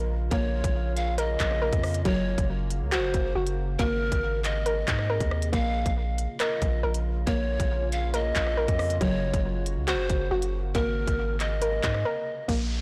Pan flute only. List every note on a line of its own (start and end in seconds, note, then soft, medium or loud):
0.31 0.93 C#5 loud
0.97 1.17 F5 medium
1.18 2.01 D#5 medium
2.05 2.46 C#5 loud
2.92 3.33 C5 loud
3.79 4.41 A#4 loud
4.44 5.49 D#5 medium
5.53 5.94 F5 loud
6.40 6.81 D#5 medium
7.27 7.88 C#5 loud
7.92 8.13 F5 medium
8.14 8.97 D#5 medium
9.01 9.42 C#5 loud
9.88 10.29 C5 medium
10.75 11.36 A#4 loud
11.40 12.45 D#5 medium